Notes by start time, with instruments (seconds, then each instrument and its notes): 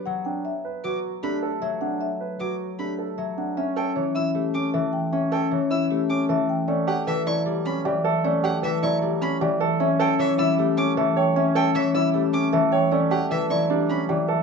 Already playing: harp B3, grand piano B4
0.06 harp F#3, marimba F#5
0.25 grand piano D4, marimba G5
0.45 marimba E5
0.65 grand piano B4
0.84 harp F#3, grand piano F#4, marimba B4, violin D6
1.23 harp A3, grand piano D4, marimba G4, violin B5
1.43 grand piano A4
1.62 harp F#3, marimba E5
1.81 grand piano D4, marimba F#5
2.01 marimba E5
2.21 grand piano B4
2.40 harp F#3, grand piano F#4, marimba B4, violin D6
2.79 harp A3, grand piano D4, marimba G4, violin B5
2.99 grand piano A4
3.18 harp F#3, marimba E5
3.37 grand piano D4, marimba F#5
3.57 grand piano C#4, harp C#4, marimba E5
3.76 grand piano A4, violin G5
3.96 harp E3, marimba C#5, grand piano C#5
4.15 grand piano E4, marimba E5, violin E6
4.35 harp A3, marimba G4
4.54 grand piano C#4, violin D6
4.74 harp E3, grand piano A4, marimba E5
4.93 marimba G5
5.13 grand piano C#4, harp C#4, marimba E5
5.32 grand piano A4, violin G5
5.51 harp E3, grand piano C#5, marimba C#5
5.71 grand piano E4, marimba E5, violin E6
5.90 harp A3, marimba G4
6.10 grand piano C#4, violin D6
6.29 harp E3, grand piano A4, marimba E5
6.49 marimba G5
6.68 harp A3, grand piano C#4, marimba D5
6.88 grand piano G4, violin F#5
7.07 harp E3, grand piano A4, marimba B4, violin E5
7.27 harp F#3, grand piano E4, marimba D5, violin C#6
7.46 harp G3, marimba G4
7.65 grand piano C#4, violin B5
7.85 harp E3, grand piano G4, marimba D5
8.05 grand piano A4, marimba E5
8.24 harp A3, grand piano C#4, marimba D5
8.44 grand piano G4, violin F#5
8.63 harp E3, grand piano A4, marimba B4, violin E5
8.83 harp F#3, grand piano E4, marimba D5, violin C#6
9.02 harp G3, marimba G4
9.21 grand piano C#4, violin B5
9.41 harp E3, grand piano G4, marimba D5
9.61 grand piano A4, marimba E5
9.80 grand piano C#4, harp C#4, marimba E5
10.00 grand piano A4, violin G5
10.19 harp E3, grand piano C#5, marimba C#5, violin E5
10.38 harp G3, grand piano E4, marimba E5, violin E6
10.59 harp A3, marimba G4
10.77 grand piano C#4, violin D6
10.97 harp E3, grand piano A4, marimba E5
11.17 grand piano C#5, marimba G5
11.36 harp C#4, grand piano C#4, marimba E5
11.55 grand piano A4, violin G5
11.75 harp E3, grand piano C#5, marimba C#5, violin E5
11.94 harp G3, grand piano E4, marimba E5, violin E6
12.14 harp A3, marimba G4
12.33 grand piano C#4, violin D6
12.53 harp E3, grand piano A4, marimba E5
12.72 grand piano C#5, marimba G5
12.91 harp A3, grand piano C#4, marimba D5
13.11 grand piano G4, violin F#5
13.31 harp E3, grand piano A4, marimba B4, violin E5
13.50 harp F#3, grand piano E4, marimba D5, violin C#6
13.70 harp G3, grand piano D4, marimba G4
13.89 grand piano C#4, violin B5
14.09 harp E3, grand piano G4, marimba D5
14.28 grand piano A4, marimba E5